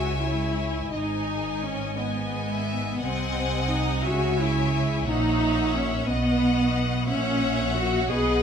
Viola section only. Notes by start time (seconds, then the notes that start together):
Already playing: F#4
0.22 E4
0.93 D#4
1.64 C#4
1.98 B3
3.02 C4
3.70 D#4
4.05 F#4
4.40 E4
5.08 D#4
5.75 C#4
6.08 B3
7.10 C#4
7.76 F#4
8.10 G#4